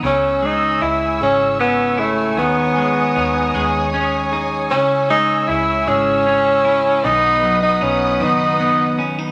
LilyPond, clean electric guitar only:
\new Staff \with { instrumentName = "Clean electric guitar" } { \time 6/8 \key cis \minor \tempo 4. = 51 cis8 gis8 e'4 cis'8 e'8 | dis8 gis8 dis'8 gis8 cis'8 dis'8 | cis8 gis8 e'8 gis8 cis'8 e'8 | b,8 fis8 dis'8 dis8 b8 cis'16 dis'16 | }